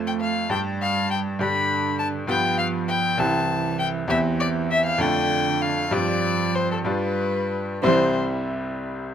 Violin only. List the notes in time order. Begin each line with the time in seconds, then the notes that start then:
0.07 G5
0.21 F5
0.51 G5
0.81 F5
1.11 G5
1.41 B5
1.99 A5
2.28 G5
2.58 F5
2.88 G5
3.19 A5
3.79 G5
4.10 E5
4.40 D5
4.71 E5
4.86 F5
5.01 G5
5.62 F5
5.93 D5
6.55 C5
6.72 A4
6.86 B4
7.83 C5